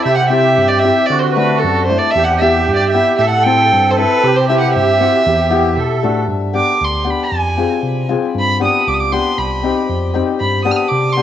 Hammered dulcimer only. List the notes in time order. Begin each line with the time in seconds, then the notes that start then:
0.30 C4 E4 G4
0.84 C4 E4 G4
1.36 A3 D4 F#4
1.89 A3 D4 E4
2.41 B3 E4 G4
2.94 B3 E4 G4
3.46 C4 E4 A4
3.97 C4 E4 A4
4.49 C4 E4 G4
5.00 C4 E4 F#4
5.50 B3 E4 G4
6.03 A3 D4 F#4
6.53 B3 D4 G4
7.04 B3 D4 G4
7.57 C4 F4 G#4
8.09 C4 F4 G#4
8.60 B3 D4 G4
9.12 B3 D4 G4
9.63 C4 D#4 G4
10.14 C4 D#4 G4
10.65 B3 D4 G4
11.17 B3 D4 G4